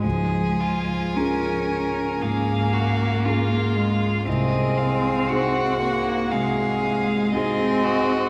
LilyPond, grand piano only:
\new Staff \with { instrumentName = "Grand piano" } { \time 4/4 \key des \major \tempo 4 = 58 des,4 <des' f' aes'>4 aes,4 <des' f' aes'>4 | c,4 <ees' ges' aes'>4 c4 <ees' ges' aes'>4 | }